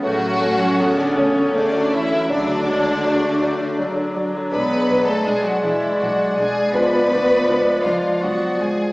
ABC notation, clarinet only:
X:1
M:3/4
L:1/8
Q:1/4=81
K:F#m
V:1 name="Clarinet"
A, C B,2 A, z | F, G, A,2 F,2- | F,2 G,4 | G, A, G,2 B, z |]